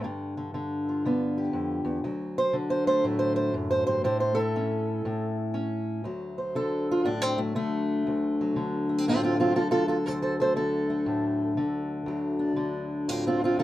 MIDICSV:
0, 0, Header, 1, 2, 480
1, 0, Start_track
1, 0, Tempo, 502092
1, 33, Time_signature, 4, 2, 24, 8
1, 13033, End_track
2, 0, Start_track
2, 0, Title_t, "Steel-string acoustic guitar"
2, 0, Program_c, 0, 25
2, 36, Note_on_c, 0, 43, 77
2, 39, Note_on_c, 0, 50, 53
2, 343, Note_off_c, 0, 50, 0
2, 357, Note_on_c, 0, 50, 55
2, 506, Note_off_c, 0, 50, 0
2, 517, Note_on_c, 0, 50, 69
2, 848, Note_on_c, 0, 65, 50
2, 996, Note_off_c, 0, 50, 0
2, 1007, Note_on_c, 0, 50, 70
2, 1016, Note_on_c, 0, 59, 53
2, 1316, Note_on_c, 0, 67, 49
2, 1460, Note_off_c, 0, 43, 0
2, 1464, Note_on_c, 0, 41, 71
2, 1761, Note_off_c, 0, 41, 0
2, 1764, Note_on_c, 0, 40, 73
2, 1937, Note_off_c, 0, 50, 0
2, 1938, Note_off_c, 0, 67, 0
2, 1942, Note_off_c, 0, 59, 0
2, 1943, Note_off_c, 0, 40, 0
2, 1944, Note_off_c, 0, 65, 0
2, 1950, Note_on_c, 0, 38, 83
2, 1956, Note_on_c, 0, 54, 53
2, 2276, Note_on_c, 0, 72, 107
2, 2420, Note_on_c, 0, 50, 70
2, 2432, Note_off_c, 0, 72, 0
2, 2583, Note_on_c, 0, 72, 91
2, 2734, Note_off_c, 0, 72, 0
2, 2746, Note_on_c, 0, 72, 103
2, 2750, Note_on_c, 0, 57, 53
2, 2903, Note_off_c, 0, 54, 0
2, 2905, Note_on_c, 0, 45, 66
2, 2907, Note_off_c, 0, 72, 0
2, 2914, Note_on_c, 0, 54, 56
2, 3049, Note_on_c, 0, 72, 95
2, 3201, Note_off_c, 0, 72, 0
2, 3212, Note_on_c, 0, 72, 101
2, 3379, Note_off_c, 0, 38, 0
2, 3380, Note_off_c, 0, 72, 0
2, 3383, Note_on_c, 0, 42, 77
2, 3543, Note_on_c, 0, 72, 104
2, 3684, Note_off_c, 0, 72, 0
2, 3693, Note_off_c, 0, 42, 0
2, 3696, Note_on_c, 0, 72, 105
2, 3703, Note_on_c, 0, 43, 72
2, 3852, Note_off_c, 0, 45, 0
2, 3856, Note_off_c, 0, 72, 0
2, 3863, Note_off_c, 0, 50, 0
2, 3863, Note_on_c, 0, 45, 84
2, 3868, Note_on_c, 0, 72, 99
2, 3870, Note_off_c, 0, 54, 0
2, 3871, Note_off_c, 0, 43, 0
2, 4006, Note_off_c, 0, 72, 0
2, 4017, Note_on_c, 0, 72, 90
2, 4151, Note_off_c, 0, 57, 0
2, 4155, Note_on_c, 0, 69, 116
2, 4169, Note_on_c, 0, 64, 55
2, 4182, Note_off_c, 0, 72, 0
2, 4358, Note_on_c, 0, 61, 73
2, 4818, Note_off_c, 0, 45, 0
2, 4829, Note_on_c, 0, 45, 72
2, 5131, Note_off_c, 0, 69, 0
2, 5284, Note_off_c, 0, 61, 0
2, 5296, Note_on_c, 0, 61, 72
2, 5761, Note_off_c, 0, 61, 0
2, 5763, Note_off_c, 0, 64, 0
2, 5774, Note_on_c, 0, 38, 74
2, 5786, Note_on_c, 0, 54, 54
2, 5788, Note_off_c, 0, 45, 0
2, 6100, Note_on_c, 0, 72, 53
2, 6264, Note_on_c, 0, 50, 62
2, 6272, Note_on_c, 0, 69, 100
2, 6588, Note_off_c, 0, 69, 0
2, 6610, Note_on_c, 0, 65, 85
2, 6737, Note_on_c, 0, 45, 74
2, 6741, Note_off_c, 0, 72, 0
2, 6744, Note_on_c, 0, 62, 99
2, 6759, Note_off_c, 0, 65, 0
2, 6898, Note_off_c, 0, 50, 0
2, 6898, Note_on_c, 0, 60, 81
2, 6906, Note_off_c, 0, 62, 0
2, 7037, Note_off_c, 0, 54, 0
2, 7041, Note_on_c, 0, 54, 51
2, 7055, Note_on_c, 0, 57, 82
2, 7063, Note_off_c, 0, 60, 0
2, 7212, Note_off_c, 0, 57, 0
2, 7220, Note_on_c, 0, 50, 71
2, 7222, Note_off_c, 0, 45, 0
2, 7226, Note_on_c, 0, 57, 104
2, 7709, Note_off_c, 0, 38, 0
2, 7712, Note_on_c, 0, 38, 76
2, 8035, Note_off_c, 0, 54, 0
2, 8039, Note_on_c, 0, 54, 51
2, 8180, Note_off_c, 0, 50, 0
2, 8184, Note_on_c, 0, 50, 67
2, 8186, Note_off_c, 0, 57, 0
2, 8500, Note_on_c, 0, 57, 50
2, 8588, Note_off_c, 0, 57, 0
2, 8588, Note_on_c, 0, 60, 42
2, 8669, Note_off_c, 0, 60, 0
2, 8676, Note_on_c, 0, 45, 72
2, 8682, Note_on_c, 0, 60, 94
2, 8695, Note_on_c, 0, 65, 101
2, 8816, Note_off_c, 0, 60, 0
2, 8827, Note_off_c, 0, 65, 0
2, 8827, Note_on_c, 0, 60, 95
2, 8839, Note_on_c, 0, 65, 100
2, 8970, Note_off_c, 0, 60, 0
2, 8980, Note_off_c, 0, 54, 0
2, 8980, Note_off_c, 0, 65, 0
2, 8983, Note_on_c, 0, 54, 52
2, 8984, Note_on_c, 0, 60, 80
2, 8991, Note_on_c, 0, 65, 90
2, 9126, Note_off_c, 0, 65, 0
2, 9137, Note_on_c, 0, 65, 90
2, 9141, Note_on_c, 0, 69, 104
2, 9143, Note_off_c, 0, 50, 0
2, 9145, Note_off_c, 0, 60, 0
2, 9147, Note_on_c, 0, 50, 71
2, 9153, Note_off_c, 0, 45, 0
2, 9193, Note_off_c, 0, 65, 0
2, 9274, Note_off_c, 0, 69, 0
2, 9282, Note_on_c, 0, 65, 94
2, 9289, Note_on_c, 0, 69, 116
2, 9391, Note_off_c, 0, 65, 0
2, 9445, Note_off_c, 0, 69, 0
2, 9446, Note_on_c, 0, 65, 83
2, 9457, Note_on_c, 0, 69, 90
2, 9530, Note_off_c, 0, 65, 0
2, 9604, Note_off_c, 0, 69, 0
2, 9615, Note_on_c, 0, 69, 78
2, 9624, Note_on_c, 0, 72, 85
2, 9632, Note_off_c, 0, 38, 0
2, 9635, Note_on_c, 0, 38, 81
2, 9671, Note_off_c, 0, 69, 0
2, 9768, Note_off_c, 0, 72, 0
2, 9773, Note_on_c, 0, 69, 81
2, 9779, Note_on_c, 0, 72, 85
2, 9876, Note_off_c, 0, 69, 0
2, 9938, Note_off_c, 0, 72, 0
2, 9942, Note_on_c, 0, 69, 88
2, 9955, Note_on_c, 0, 57, 49
2, 9956, Note_on_c, 0, 72, 98
2, 10018, Note_off_c, 0, 69, 0
2, 10093, Note_off_c, 0, 50, 0
2, 10097, Note_on_c, 0, 50, 72
2, 10098, Note_off_c, 0, 72, 0
2, 10102, Note_on_c, 0, 69, 101
2, 10416, Note_off_c, 0, 57, 0
2, 10420, Note_on_c, 0, 57, 51
2, 10575, Note_on_c, 0, 45, 74
2, 11051, Note_off_c, 0, 50, 0
2, 11062, Note_off_c, 0, 45, 0
2, 11063, Note_on_c, 0, 50, 75
2, 11519, Note_off_c, 0, 38, 0
2, 11530, Note_on_c, 0, 38, 80
2, 11537, Note_off_c, 0, 54, 0
2, 11544, Note_off_c, 0, 69, 0
2, 11549, Note_on_c, 0, 54, 52
2, 11847, Note_on_c, 0, 62, 50
2, 12000, Note_off_c, 0, 50, 0
2, 12011, Note_on_c, 0, 50, 73
2, 12506, Note_on_c, 0, 45, 66
2, 12512, Note_off_c, 0, 57, 0
2, 12512, Note_on_c, 0, 60, 91
2, 12517, Note_off_c, 0, 62, 0
2, 12517, Note_on_c, 0, 65, 103
2, 12669, Note_off_c, 0, 60, 0
2, 12670, Note_off_c, 0, 65, 0
2, 12684, Note_on_c, 0, 60, 84
2, 12692, Note_on_c, 0, 65, 91
2, 12836, Note_off_c, 0, 60, 0
2, 12840, Note_off_c, 0, 65, 0
2, 12848, Note_on_c, 0, 60, 77
2, 12859, Note_on_c, 0, 65, 97
2, 12979, Note_off_c, 0, 50, 0
2, 12982, Note_off_c, 0, 65, 0
2, 12988, Note_off_c, 0, 45, 0
2, 12990, Note_on_c, 0, 50, 75
2, 12995, Note_on_c, 0, 65, 90
2, 12998, Note_off_c, 0, 60, 0
2, 13000, Note_on_c, 0, 69, 113
2, 13033, Note_off_c, 0, 38, 0
2, 13033, Note_off_c, 0, 50, 0
2, 13033, Note_off_c, 0, 54, 0
2, 13033, Note_off_c, 0, 65, 0
2, 13033, Note_off_c, 0, 69, 0
2, 13033, End_track
0, 0, End_of_file